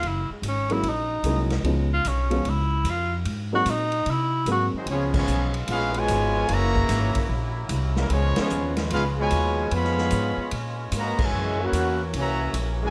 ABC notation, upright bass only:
X:1
M:4/4
L:1/8
Q:"Swing" 1/4=149
K:Db
V:1 name="Upright bass" clef=bass
G,,, z A,,,2 B,,,2 C,,2 | D,,2 _C,,2 D,,2 F,,2 | A,,2 B,,2 C,2 A,, z | D,,2 _C,,2 B,,,2 A,,,2 |
G,,,2 A,,, z B,,,2 C,,2 | D,, z E,,2 D,,2 E,,2 | F,,2 A,, z B,,2 A,, z | G,,2 _F,,2 C,,2 B,,,2 |]